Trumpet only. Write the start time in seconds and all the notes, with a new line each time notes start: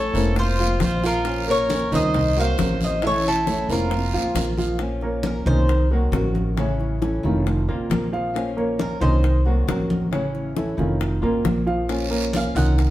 Already playing: A4
0.38 F4
0.83 F4
1.05 F4
1.49 A#4
1.94 C5
2.39 C5
2.84 C5
3.06 A4
3.27 E4
3.71 F4